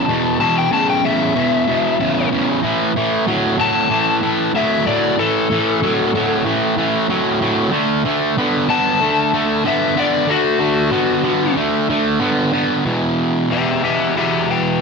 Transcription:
0.00 0.37 A5 loud
0.08 0.37 E2 medium
0.08 0.37 B2 medium
0.39 0.68 E2 medium
0.39 0.69 B2 medium
0.39 0.56 A5 medium
0.58 0.72 G5 medium
0.71 1.00 E2 medium
0.71 1.00 C#3 loud
0.71 0.88 A5 medium
0.90 1.04 G5 medium
1.04 1.32 E2 medium
1.04 1.33 C#3 medium
1.04 2.28 E5 medium
1.35 1.64 E2 medium
1.35 1.64 B2 medium
1.67 1.96 E2 medium
1.67 1.96 B2 medium
1.99 2.28 E2 medium
1.99 2.28 C#3 loud
2.31 2.60 E2 medium
2.31 2.60 C#3 medium
2.63 2.91 A2 medium
2.63 2.92 E3 medium
2.96 3.24 A2 medium
2.96 3.24 E3 medium
3.27 3.56 A2 medium
3.27 3.56 F#3 loud
3.59 3.87 A2 medium
3.59 3.87 F#3 medium
3.59 4.52 A5 medium
3.90 4.19 A2 medium
3.90 4.19 E3 medium
4.22 4.51 A2 medium
4.22 4.51 E3 medium
4.55 4.83 A2 medium
4.55 4.83 F#3 medium
4.55 4.86 E5 medium
4.86 5.15 A2 medium
4.86 5.15 F#3 medium
4.86 5.17 D5 loud
5.18 5.47 A2 medium
5.18 5.47 E3 medium
5.18 6.43 A4 medium
5.50 5.79 A2 medium
5.50 5.80 E3 medium
5.83 6.11 A2 medium
5.83 6.11 F#3 medium
6.15 6.43 A2 medium
6.15 6.43 F#3 medium
6.45 6.74 A2 medium
6.45 6.74 E3 medium
6.77 7.06 A2 medium
6.77 7.07 E3 medium
7.09 7.38 A2 medium
7.09 7.38 F#3 medium
7.41 7.70 A2 medium
7.41 7.71 F#3 medium
7.72 8.02 D3 medium
7.72 8.02 A3 medium
8.05 8.34 D3 medium
8.05 8.34 A3 medium
8.38 8.66 D3 medium
8.38 8.66 B3 loud
8.69 8.98 D3 medium
8.69 8.98 B3 medium
8.69 9.63 A5 medium
9.01 9.30 D3 medium
9.01 9.30 A3 loud
9.33 9.62 D3 medium
9.33 9.63 A3 medium
9.65 9.94 D3 medium
9.65 9.94 B3 medium
9.65 9.98 E5 medium
9.96 10.26 D3 medium
9.96 10.26 B3 medium
9.96 10.30 D5 medium
10.27 10.57 D3 medium
10.27 10.58 A3 loud
10.27 11.55 F#4 loud
10.59 10.89 D3 medium
10.59 10.90 A3 medium
10.92 11.22 D3 medium
10.92 11.22 B3 medium
11.24 11.54 D3 medium
11.24 11.54 B3 medium
11.56 11.86 D3 medium
11.56 11.86 A3 medium
11.90 12.19 D3 medium
11.90 12.19 A3 medium
12.20 12.50 D3 medium
12.20 12.50 B3 loud
12.53 12.83 D3 medium
12.53 12.83 B3 medium
12.85 13.49 E2 medium
12.85 13.51 B2 medium
12.85 13.50 E3 medium
13.50 13.81 E2 medium
13.50 13.82 B2 medium
13.50 13.82 E3 medium
13.50 13.83 G4 medium
13.50 13.83 E5 medium
13.82 14.14 E2 medium
13.82 14.15 B2 medium
13.82 14.16 E3 medium
13.82 14.14 G4 medium
13.82 14.15 E5 medium
14.15 14.79 E2 medium
14.15 14.80 B2 medium
14.15 14.80 E3 medium
14.15 14.47 G4 medium
14.15 14.48 E5 medium
14.50 14.80 B4 medium
14.50 14.81 G5 medium

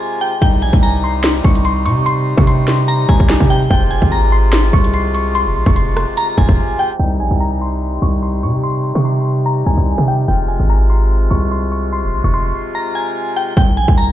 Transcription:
0.00 3.67 C3 medium
0.00 0.38 G#3 medium
0.00 0.39 F4 medium
0.00 0.19 G#5 medium
0.21 0.38 G5 medium
0.42 0.64 C2 loud
0.42 3.67 G3 medium
0.42 3.67 D#4 medium
0.42 0.58 G5 loud
0.42 kick loud
0.42 closed hi-hat medium
0.62 0.73 A#1 loud
0.62 0.79 G#5 medium
0.62 closed hi-hat medium
0.73 1.42 C2 loud
0.73 kick loud
0.83 1.00 A#5 medium
0.83 closed hi-hat medium
1.04 1.42 C6 medium
1.24 snare loud
1.24 closed hi-hat medium
1.44 1.87 C2 loud
1.44 1.61 C#6 medium
1.44 kick loud
1.55 closed hi-hat medium
1.65 1.82 C6 medium
1.65 closed hi-hat medium
1.86 2.35 C3 loud
1.86 2.02 C#6 medium
1.86 closed hi-hat medium
2.06 2.36 C6 loud
2.06 closed hi-hat medium
2.37 3.06 C3 loud
2.37 2.45 C#6 medium
2.37 kick loud
2.47 2.86 C6 medium
2.47 closed hi-hat medium
2.68 snare medium
2.68 closed hi-hat medium
2.88 3.05 A#5 loud
2.88 closed hi-hat medium
3.09 3.19 C2 loud
3.09 3.47 G#5 medium
3.09 kick loud
3.09 closed hi-hat medium
3.20 3.40 C2 loud
3.20 kick loud
3.29 snare loud
3.29 closed hi-hat medium
3.40 3.69 C3 loud
3.40 kick loud
3.50 3.67 G5 medium
3.70 4.01 F1 loud
3.70 6.96 C3 medium
3.70 6.96 G#3 medium
3.70 6.96 F4 loud
3.70 3.87 G5 loud
3.70 kick loud
3.70 closed hi-hat medium
3.91 4.07 G#5 medium
3.91 closed hi-hat medium
4.02 4.70 G#1 loud
4.02 kick loud
4.12 4.28 A#5 medium
4.12 closed hi-hat medium
4.32 4.71 C6 medium
4.53 snare loud
4.53 closed hi-hat medium
4.73 5.47 C2 loud
4.73 4.90 C#6 medium
4.73 kick loud
4.84 closed hi-hat medium
4.94 5.11 C6 medium
4.94 closed hi-hat medium
5.15 5.31 C#6 medium
5.15 closed hi-hat medium
5.35 5.65 C6 loud
5.35 closed hi-hat medium
5.46 5.57 D#1 loud
5.55 5.66 C2 loud
5.66 6.06 F1 loud
5.66 5.74 C#6 medium
5.66 kick loud
5.76 6.15 C6 medium
5.76 closed hi-hat medium
5.97 cross-stick medium
5.97 closed hi-hat medium
6.17 6.34 A#5 loud
6.17 closed hi-hat medium
6.38 6.48 F1 loud
6.38 6.76 G#5 medium
6.38 kick loud
6.38 closed hi-hat medium
6.49 6.58 F1 loud
6.49 kick loud
6.79 6.96 G5 medium
6.99 7.21 C2 loud
6.99 13.53 C3 medium
6.99 10.25 G3 medium
6.99 10.25 D#4 medium
6.99 7.16 G5 medium
7.20 7.30 A#1 loud
7.20 7.37 G#5 medium
7.31 7.99 C2 loud
7.40 7.57 A#5 medium
7.61 8.00 C6 medium
8.02 8.45 C2 loud
8.02 8.19 C#6 medium
8.23 8.39 C6 medium
8.43 8.93 C3 medium
8.43 8.60 C#6 medium
8.64 8.93 C6 loud
8.95 9.64 C3 loud
8.95 9.03 C#6 medium
9.05 9.44 C6 medium
9.46 9.62 A#5 medium
9.66 9.77 C2 loud
9.66 10.05 G#5 medium
9.77 9.97 C2 loud
9.98 10.27 C3 loud
10.08 10.24 G5 medium
10.28 10.58 F1 loud
10.28 13.54 G#3 medium
10.28 13.54 F4 medium
10.28 10.45 G5 medium
10.48 10.65 G#5 medium
10.60 11.28 G#1 loud
10.70 10.86 A#5 medium
10.90 11.28 C6 medium
11.31 12.05 C2 loud
11.31 11.47 C#6 medium
11.52 11.68 C6 medium
11.72 11.89 C#6 medium
11.93 12.22 C6 medium
12.03 12.15 D#1 loud
12.13 12.23 C2 loud
12.24 12.53 F1 loud
12.24 12.32 C#6 medium
12.34 12.72 C6 medium
12.75 12.91 A#5 medium
12.95 13.34 G#5 medium
13.37 13.53 G5 medium
13.57 13.79 C2 loud
13.57 13.74 G5 medium
13.57 kick loud
13.57 closed hi-hat medium
13.77 13.88 A#1 loud
13.77 13.94 G#5 medium
13.77 closed hi-hat medium
13.88 14.12 C2 loud
13.88 kick loud
13.98 14.12 A#5 medium
13.98 closed hi-hat medium

